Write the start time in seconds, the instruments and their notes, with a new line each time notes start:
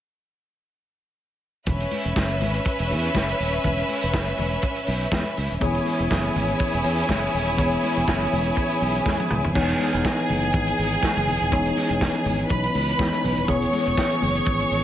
1.66 fingered electric bass E1, violin section C#4 B4 E5, kick, closed hi-hat, muted conga, low conga
1.80 closed hi-hat
1.91 open hi-hat, muted conga, high conga
2.04 fingered electric bass E1, closed hi-hat
2.16 fingered electric bass F#1, kick, snare, high conga
2.29 closed hi-hat
2.40 fingered electric bass G#1, open hi-hat, muted conga, high conga, low conga
2.54 closed hi-hat
2.65 kick, closed hi-hat, muted conga
2.79 fingered electric bass E1, closed hi-hat
2.89 fingered electric bass E2, open hi-hat, muted conga
3.04 closed hi-hat
3.14 fingered electric bass F#1, kick, snare, muted conga, high conga
3.29 closed hi-hat
3.40 fingered electric bass D#1, open hi-hat
3.53 closed hi-hat
3.64 fingered electric bass E1, kick, closed hi-hat, low conga
3.78 closed hi-hat
3.88 open hi-hat, high conga
4.01 fingered electric bass E1, closed hi-hat
4.13 fingered electric bass F#1, kick, snare, high conga
4.26 closed hi-hat
4.38 fingered electric bass E1, open hi-hat, muted conga, high conga, low conga
4.51 closed hi-hat
4.62 kick, closed hi-hat
4.76 closed hi-hat
4.87 fingered electric bass B1, open hi-hat, muted conga
5.01 closed hi-hat
5.12 fingered electric bass E2, kick, snare, muted conga, high conga
5.25 closed hi-hat
5.37 fingered electric bass C#2, open hi-hat, muted conga
5.50 fingered electric bass D#1, closed hi-hat
5.60 fingered electric bass E1, tine electric piano E3 B3 G#4 C#5, tonewheel organ E3 C#4 G#4, violin section E4 C#5 G#5, kick, closed hi-hat, muted conga, low conga
5.75 closed hi-hat
5.85 open hi-hat, high conga
5.99 fingered electric bass E1, closed hi-hat
6.10 fingered electric bass F#1, kick, snare, high conga
6.23 closed hi-hat
6.35 fingered electric bass G#1, open hi-hat, muted conga, high conga, low conga
6.48 closed hi-hat
6.59 kick, closed hi-hat, muted conga
6.73 fingered electric bass E1, closed hi-hat
6.84 fingered electric bass E2, open hi-hat, muted conga
6.98 closed hi-hat
7.09 fingered electric bass F#1, kick, snare, muted conga, high conga
7.23 closed hi-hat
7.34 fingered electric bass D#1, open hi-hat, muted conga
7.47 closed hi-hat
7.57 fingered electric bass E1, tine electric piano E3 B3 G#4 C#5, kick, closed hi-hat, low conga
7.72 closed hi-hat
7.83 open hi-hat, muted conga, high conga
7.96 fingered electric bass E1, closed hi-hat
8.07 fingered electric bass F#1, kick, snare, muted conga, high conga
8.20 closed hi-hat
8.32 fingered electric bass E1, open hi-hat, high conga, low conga
8.45 closed hi-hat
8.56 kick, closed hi-hat
8.70 closed hi-hat
8.81 fingered electric bass B1, open hi-hat, muted conga
8.95 closed hi-hat
9.06 fingered electric bass E2, kick, snare, muted conga, high conga
9.20 high tom
9.30 fingered electric bass C#2, mid tom, muted conga, low conga
9.45 fingered electric bass D#1, floor tom
9.53 fingered electric bass E1, tine electric piano E3 B3 D#4 C#5, tonewheel organ E3 B3 D#4, violin section G#4 G#5, kick, crash, muted conga, low conga
9.69 closed hi-hat
9.79 open hi-hat, muted conga, high conga
9.93 fingered electric bass E1, closed hi-hat
10.04 kick, snare, muted conga, high conga
10.17 closed hi-hat
10.29 fingered electric bass F#1, open hi-hat, muted conga, high conga, low conga
10.42 closed hi-hat
10.53 fingered electric bass G#1, kick, closed hi-hat
10.67 closed hi-hat
10.78 fingered electric bass G#1, open hi-hat
10.92 closed hi-hat
11.03 kick, snare, muted conga, high conga
11.17 fingered electric bass F#1, closed hi-hat
11.27 fingered electric bass E1, open hi-hat, low conga
11.41 fingered electric bass D#1, closed hi-hat
11.50 fingered electric bass E1, tine electric piano E3 B3 D#4 C#5, tonewheel organ C#4, kick, closed hi-hat, muted conga, low conga
11.66 closed hi-hat
11.76 open hi-hat, high conga
11.89 fingered electric bass E1, closed hi-hat
12.01 kick, snare, high conga
12.13 closed hi-hat
12.25 fingered electric bass G#1, open hi-hat, high conga, low conga
12.38 closed hi-hat
12.49 fingered electric bass B1, violin section B4 B5, kick, closed hi-hat, muted conga
12.64 closed hi-hat
12.74 fingered electric bass C#2, open hi-hat, muted conga
12.89 closed hi-hat
12.98 fingered electric bass E2, tine electric piano E3 B3 D#4 C#5, kick, snare, muted conga, high conga
13.13 closed hi-hat
13.24 fingered electric bass B1, open hi-hat, low conga
13.37 fingered electric bass D#1, closed hi-hat
13.46 fingered electric bass E1, tine electric piano E3 B3 G#4 C#5, tonewheel organ G#4, violin section C#5 C#6, kick, closed hi-hat, muted conga, low conga
13.62 closed hi-hat
13.72 open hi-hat, muted conga, high conga
13.86 fingered electric bass E1, closed hi-hat
13.97 kick, snare, muted conga, high conga
14.10 closed hi-hat
14.22 fingered electric bass F#1, open hi-hat, muted conga, high conga, low conga
14.35 closed hi-hat
14.45 fingered electric bass G#1, kick, closed hi-hat, muted conga
14.60 closed hi-hat
14.71 fingered electric bass G#1, open hi-hat